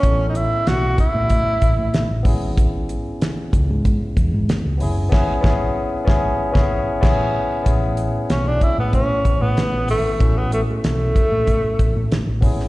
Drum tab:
CC |----------------|----------------|x-----------x---|----------------|
HH |x-x-x-x-x-x-x-o-|x-x-x-x-x-x-x-o-|----------------|x-x-x-x-x-x-x-o-|
SD |----o-------o---|----o-------o---|o-o---o--o--o---|----o-------o---|
BD |o-----o-o-o---o-|o-----o-o-o-----|o-o---o--o--o---|o-----o-o-o-----|

CC |----------------|
HH |x-x-x-x-x-x-x-o-|
SD |----o-------o--o|
BD |o-----o-o-o---o-|